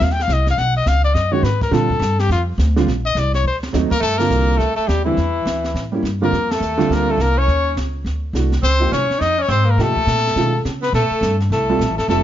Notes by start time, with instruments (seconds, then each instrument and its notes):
0.00 upright bass D#2, trumpet F5, brush sweep, snare
0.10 trumpet G5, snare
0.20 trumpet F5, snare
0.28 upright bass C2, snare, hi-hat pedal
0.33 trumpet D#5
0.47 trumpet F5, snare
0.57 upright bass B1, trumpet F#5, brush sweep, snare
0.77 trumpet D#5
0.86 upright bass C#2, trumpet F5, snare, hi-hat pedal
1.05 trumpet D5
1.14 upright bass F#2, trumpet D#5, brush sweep, snare
1.32 grand piano D#3 G#3 C#4 F#4, trumpet C#5
1.43 upright bass G#2, trumpet B4, snare, hi-hat pedal
1.61 trumpet A#4, kick, snare
1.71 upright bass A#2, grand piano D3 G3 C4 F4, trumpet A4, brush sweep, snare
1.90 kick
2.00 upright bass G2, snare, hi-hat pedal
2.19 trumpet G4, snare
2.29 upright bass F2, trumpet F4, brush sweep, snare
2.58 upright bass D2, snare, hi-hat pedal
2.76 grand piano D3 G3 C4 F4, snare
2.86 upright bass A#1, brush sweep, snare
3.06 trumpet D#5
3.15 upright bass C2, snare, hi-hat pedal
3.19 trumpet D5
3.34 trumpet C#5, snare
3.44 upright bass D2, trumpet C5
3.63 snare
3.73 upright bass D#2, grand piano F#3 A3 C4 D#4, snare, hi-hat pedal
3.91 tenor saxophone A#3, trumpet A#4, muted upright bass stroke, kick, crash
4.00 upright bass G2, tenor saxophone A3, trumpet A4, brush sweep, snare
4.18 grand piano D3 G3 C4 F4, tenor saxophone A#3, trumpet A#4, snare, ride
4.30 upright bass C2, hi-hat pedal
4.57 upright bass D2, tenor saxophone A3, trumpet A4, brush sweep, snare
4.76 tenor saxophone A3, trumpet A4, muted upright bass stroke
4.88 upright bass D#2, tenor saxophone G3, trumpet G4, snare, hi-hat pedal
5.05 grand piano D3 G3 C4 E4, tenor saxophone E3, trumpet E4
5.17 upright bass E2, brush sweep, snare
5.46 upright bass D2, snare, hi-hat pedal
5.64 snare
5.74 upright bass A2, brush sweep, snare
5.92 grand piano G3 A#3 C#4 E4
6.03 upright bass G2, snare, hi-hat pedal
6.22 grand piano D3 G3 C4 F4, tenor saxophone A#3, trumpet A#4
6.32 upright bass F2, brush sweep, snare
6.51 tenor saxophone A3, trumpet A4, snare, ride
6.60 upright bass D#2, hi-hat pedal
6.78 grand piano D3 G3 C4 F4, snare
6.89 upright bass D2, tenor saxophone A#3, brush sweep, snare
6.95 trumpet A#4
7.09 tenor saxophone A3, trumpet A4
7.18 upright bass C2, tenor saxophone A#3, snare, hi-hat pedal
7.22 trumpet A#4
7.38 tenor saxophone C#4, trumpet C#5
7.47 upright bass D#2, brush sweep, snare
7.77 upright bass C#2, snare, hi-hat pedal
8.05 upright bass D2, brush sweep, snare
8.33 upright bass C2, grand piano E3 A3 D4 F#4, snare, hi-hat pedal
8.52 snare
8.62 upright bass C#2, tenor saxophone C4, trumpet C5, brush sweep, snare
8.80 grand piano F3 A#3 D#4 G4
8.92 upright bass C2, tenor saxophone C#4, trumpet C#5, snare, hi-hat pedal
9.10 muted upright bass stroke, snare
9.19 upright bass F2, tenor saxophone D#4, trumpet D#5, brush sweep, snare
9.38 tenor saxophone C#4, trumpet C#5
9.48 upright bass G#2, tenor saxophone C4, trumpet C5, snare, hi-hat pedal
9.66 tenor saxophone A#3
9.71 trumpet A#4
9.78 upright bass C3, grand piano F3 A#3 D#4 G4, tenor saxophone A3, brush sweep, snare
9.82 trumpet A4
9.96 muted upright bass stroke, kick
10.06 upright bass A#2, snare, hi-hat pedal
10.17 snare
10.27 snare
10.35 upright bass B2, grand piano D#3 G#3 C#4 F4, brush sweep, snare
10.65 upright bass C#3, snare, hi-hat pedal
10.82 tenor saxophone B3, trumpet B4, snare
10.93 upright bass A#2, tenor saxophone A3, trumpet A4, brush sweep, snare
11.10 muted upright bass stroke
11.21 upright bass G2, snare, hi-hat pedal
11.40 snare
11.50 upright bass C2, tenor saxophone A3, trumpet A4, brush sweep, snare
11.69 grand piano G3 C4 F4 A4
11.79 upright bass A#1, snare, hi-hat pedal
11.89 upright bass A1
11.98 upright bass F1, tenor saxophone A3, trumpet A4, snare
12.08 upright bass F1, grand piano G3 C4 F4 A4, tenor saxophone A3, trumpet A4, brush sweep, snare